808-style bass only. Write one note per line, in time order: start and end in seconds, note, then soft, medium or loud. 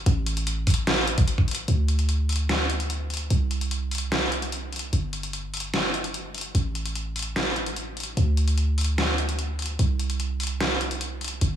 0.06 1.66 A1 medium
1.68 3.28 D2 medium
3.30 4.91 C2 medium
4.93 6.53 G1 medium
6.55 8.15 A1 medium
8.17 9.77 D2 medium
9.79 11.39 C2 medium
11.41 11.56 G1 medium